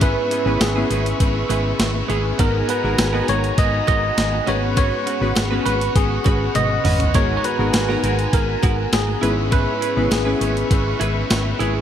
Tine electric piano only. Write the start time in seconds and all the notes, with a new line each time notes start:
0.03 B4
0.62 G#4
2.10 G#4
2.40 A#4
2.70 B4
3.29 C#5
3.59 D#5
3.88 D#5
4.48 C#5
4.78 C#5
5.66 B4
5.96 G#4
6.56 D#5
7.15 C#5
7.37 C#5
7.45 B4
8.34 A#4
8.94 G#4
9.52 B4
10.12 G#4
11.59 G#4